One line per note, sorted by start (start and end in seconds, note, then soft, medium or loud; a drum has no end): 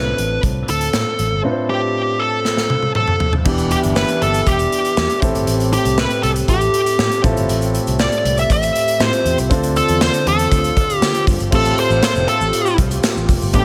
0.00 0.12 C2 medium
0.00 0.14 A2 medium
0.00 1.39 C4 medium
0.00 1.40 D4 medium
0.00 1.40 F4 medium
0.00 1.41 A4 medium
0.00 0.40 B4 medium
0.18 0.37 A1 medium
0.18 closed hi-hat medium
0.43 0.62 C2 medium
0.43 kick medium
0.43 closed hi-hat medium
0.68 0.88 D2 medium
0.68 1.41 A4 medium
0.68 closed hi-hat medium
0.81 closed hi-hat soft
0.93 1.03 A2 medium
0.93 snare loud
0.93 closed hi-hat medium
1.19 1.29 A1 medium
1.19 closed hi-hat medium
1.32 1.41 G1 medium
1.43 2.16 A2 medium
1.43 3.41 C4 medium
1.43 3.42 D4 medium
1.43 3.42 F4 medium
1.43 1.51 B4 medium
1.51 3.45 C5 medium
1.70 2.21 G4 medium
2.19 2.91 A4 loud
2.45 snare medium
2.57 snare medium
2.70 high tom medium
2.82 high tom medium
2.95 3.31 A4 medium
2.95 mid tom medium
3.08 mid tom medium
3.20 floor tom medium
3.33 floor tom medium
3.45 3.74 E1 loud
3.45 4.17 E3 medium
3.45 5.20 E3 medium
3.45 5.18 B3 medium
3.45 5.18 D4 medium
3.45 5.20 D4 medium
3.45 5.19 E4 medium
3.45 9.47 G4 medium
3.45 5.19 G4 medium
3.45 kick loud
3.45 crash medium
3.45 shaker medium
3.58 closed hi-hat medium
3.58 shaker medium
3.71 3.78 G4 medium
3.71 closed hi-hat medium
3.71 shaker soft
3.83 4.03 G1 loud
3.83 closed hi-hat medium
3.83 shaker soft
3.96 4.20 B4 loud
3.96 snare loud
3.96 shaker medium
4.08 closed hi-hat medium
4.08 shaker soft
4.22 4.40 G1 medium
4.22 4.48 A4 medium
4.22 closed hi-hat medium
4.34 closed hi-hat medium
4.34 shaker medium
4.46 4.66 E1 medium
4.46 5.19 G4 medium
4.46 kick medium
4.46 closed hi-hat medium
4.46 shaker medium
4.59 closed hi-hat soft
4.59 shaker medium
4.72 closed hi-hat medium
4.84 closed hi-hat medium
4.84 shaker soft
4.97 5.07 E2 loud
4.97 snare loud
4.97 shaker medium
5.10 closed hi-hat medium
5.10 shaker soft
5.21 5.32 A1 medium
5.21 5.94 A2 medium
5.21 9.47 A3 medium
5.21 6.45 C4 medium
5.21 7.22 C4 medium
5.21 6.45 E4 medium
5.21 6.46 G4 medium
5.21 6.46 A4 medium
5.21 kick loud
5.21 closed hi-hat medium
5.21 shaker soft
5.35 5.44 G1 medium
5.35 closed hi-hat soft
5.35 shaker medium
5.47 5.76 A1 loud
5.47 closed hi-hat medium
5.47 shaker medium
5.60 closed hi-hat medium
5.60 shaker medium
5.73 5.99 G4 medium
5.73 closed hi-hat medium
5.73 shaker soft
5.85 6.04 C2 medium
5.85 closed hi-hat medium
5.85 shaker soft
5.98 6.22 B4 loud
5.98 snare loud
5.98 shaker medium
6.10 closed hi-hat medium
6.10 shaker soft
6.23 6.42 C2 medium
6.23 6.30 A4 loud
6.23 closed hi-hat medium
6.36 closed hi-hat medium
6.36 shaker medium
6.47 6.67 A1 medium
6.47 7.21 C4 soft
6.47 7.22 E4 soft
6.47 7.24 G4 soft
6.47 7.20 G4 medium
6.47 7.23 A4 medium
6.47 kick medium
6.47 closed hi-hat medium
6.47 shaker medium
6.61 closed hi-hat soft
6.61 shaker medium
6.74 closed hi-hat medium
6.86 closed hi-hat medium
6.86 shaker medium
6.99 7.08 A2 loud
6.99 snare loud
6.99 shaker medium
7.11 closed hi-hat medium
7.11 shaker soft
7.22 7.33 A1 medium
7.22 7.96 A2 medium
7.22 8.96 C4 medium
7.22 8.97 E4 medium
7.22 8.97 F4 medium
7.22 8.97 A4 medium
7.22 9.49 E5 medium
7.22 kick loud
7.22 closed hi-hat medium
7.22 shaker soft
7.37 7.46 G1 medium
7.37 closed hi-hat soft
7.37 shaker soft
7.49 7.78 A1 loud
7.49 closed hi-hat medium
7.49 shaker medium
7.61 closed hi-hat medium
7.61 shaker medium
7.74 closed hi-hat medium
7.74 shaker soft
7.87 8.06 C2 medium
7.87 closed hi-hat medium
7.87 shaker soft
7.99 8.35 D5 loud
7.99 snare loud
7.99 shaker medium
8.12 closed hi-hat medium
8.12 shaker soft
8.25 8.44 C2 medium
8.25 closed hi-hat medium
8.37 8.51 E5 loud
8.37 closed hi-hat medium
8.37 shaker medium
8.50 8.69 A1 loud
8.50 9.03 E5 loud
8.50 kick medium
8.50 closed hi-hat medium
8.50 shaker medium
8.62 closed hi-hat soft
8.62 shaker medium
8.76 closed hi-hat medium
8.88 closed hi-hat medium
8.88 shaker medium
9.00 9.09 A2 loud
9.00 9.48 C4 soft
9.00 9.51 E4 soft
9.00 9.50 F4 soft
9.00 9.51 G4 medium
9.00 9.36 C5 medium
9.00 snare loud
9.00 shaker medium
9.13 closed hi-hat medium
9.13 shaker soft
9.25 9.35 E2 medium
9.25 closed hi-hat medium
9.25 shaker medium
9.38 9.48 C2 medium
9.38 closed hi-hat soft
9.38 shaker soft
9.50 9.79 D2 loud
9.50 10.22 D3 medium
9.50 11.50 D3 medium
9.50 11.48 C4 medium
9.50 11.51 C4 medium
9.50 11.48 D4 medium
9.50 11.49 F4 medium
9.50 11.51 F4 medium
9.50 11.49 A4 medium
9.50 kick loud
9.50 closed hi-hat medium
9.50 shaker medium
9.63 closed hi-hat medium
9.63 shaker medium
9.76 10.02 A4 medium
9.76 closed hi-hat medium
9.76 shaker soft
9.89 10.08 E2 loud
9.89 closed hi-hat medium
9.89 shaker soft
10.01 10.25 C5 loud
10.01 snare loud
10.01 tambourine medium
10.01 shaker medium
10.13 closed hi-hat medium
10.13 shaker soft
10.26 10.45 E2 medium
10.26 10.95 A4 medium
10.26 closed hi-hat medium
10.39 closed hi-hat medium
10.39 shaker medium
10.52 10.71 D2 medium
10.52 kick medium
10.52 closed hi-hat medium
10.52 shaker medium
10.64 closed hi-hat soft
10.64 shaker medium
10.77 kick loud
10.77 closed hi-hat medium
10.90 closed hi-hat medium
10.90 shaker medium
10.95 11.24 G4 medium
11.02 11.11 D3 loud
11.02 snare loud
11.02 tambourine medium
11.02 shaker medium
11.15 closed hi-hat medium
11.15 shaker soft
11.27 11.37 G2 medium
11.27 kick loud
11.27 open hi-hat medium
11.27 shaker soft
11.39 11.49 G1 medium
11.39 closed hi-hat soft
11.39 shaker medium
11.51 11.71 A1 loud
11.51 12.24 A2 medium
11.51 13.65 A3 medium
11.51 13.49 C4 medium
11.51 13.50 F4 medium
11.51 13.52 F4 medium
11.51 13.65 G4 medium
11.51 13.50 G4 medium
11.51 13.50 A4 medium
11.51 kick loud
11.51 crash loud
11.51 shaker medium
11.55 11.77 A4 medium
11.65 closed hi-hat medium
11.65 shaker medium
11.78 12.03 C5 loud
11.78 closed hi-hat medium
11.90 12.00 A1 loud
11.90 shaker soft
12.03 12.27 C5 loud
12.03 snare loud
12.03 closed hi-hat medium
12.03 tambourine medium
12.03 shaker medium
12.15 12.25 F1 medium
12.15 shaker soft
12.28 12.75 A4 medium
12.28 closed hi-hat medium
12.41 12.50 A1 medium
12.41 shaker medium
12.53 closed hi-hat medium
12.53 shaker medium
12.66 shaker medium
12.78 12.97 C2 medium
12.78 kick loud
12.78 closed hi-hat medium
12.78 shaker soft
12.91 closed hi-hat medium
12.91 shaker medium
13.03 snare loud
13.03 closed hi-hat medium
13.03 tambourine medium
13.03 shaker medium
13.17 13.26 A1 medium
13.17 shaker soft
13.29 13.38 F1 medium
13.29 kick loud
13.29 open hi-hat medium
13.29 shaker soft
13.41 13.51 G1 medium
13.41 shaker medium
13.53 13.65 A1 loud
13.53 13.65 A2 medium
13.53 13.65 B3 medium
13.53 13.65 D4 medium
13.53 13.65 G4 medium
13.53 13.65 A4 medium
13.53 13.65 B4 medium
13.53 kick loud
13.53 closed hi-hat medium
13.53 shaker medium